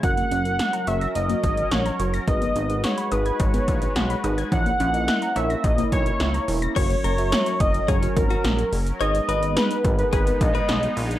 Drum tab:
CC |----------------|----------------|----------------|x---------------|
HH |xxxxxxxxxxxxxxxx|xxxxxxxxxxxxxxxx|xxxxxxxxxxxxxxox|xxxxxxxxxxxxxxox|
SD |----o-------o---|----o-------o---|----o-------o---|----o-------o---|
BD |o---------o-----|o-------o-o-----|o-------o-o-----|o-----o-o-o-----|

CC |----------------|
HH |xxxxxxxxxxxxxxox|
SD |----o-------o---|
BD |------o-o-o-----|